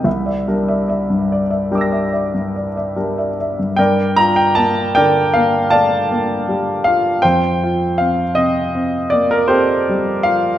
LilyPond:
<<
  \new Staff \with { instrumentName = "Grand piano" } { \time 9/8 \key c \dorian \tempo 4. = 52 << { r2 <g'' d''' e''' bes'''>2~ <g'' d''' e''' bes'''>8 | <bes' d'' g''>8 bes''16 g''16 a''8 <bes' d'' g''>8 f''8 <d'' f'' a''>4. f''8 | <c'' g''>4 f''8 ees''4 d''16 bes'16 <g' a' c''>4 f''8 | } \\ { e''16 <d'' e''>16 bes'16 <d'' e''>16 <d'' e''>16 g,16 d''16 <d'' e''>16 bes'16 <d'' e''>16 <d'' e''>16 g,16 d''16 <d'' e''>16 bes'16 <d'' e''>16 <d'' e''>16 g,16 | r1 r8 | r1 r8 | } >> }
  \new Staff \with { instrumentName = "Grand piano" } { \time 9/8 \key c \dorian c,8 <g d'>4. <g d'>4. <g d'>4 | g,8 f'8 bes8 d8 bes8 a8 bes8 g8 f'8 | f,8 f'8 c'8 c8 c'8 bes8 c'8 g8 f'8 | }
>>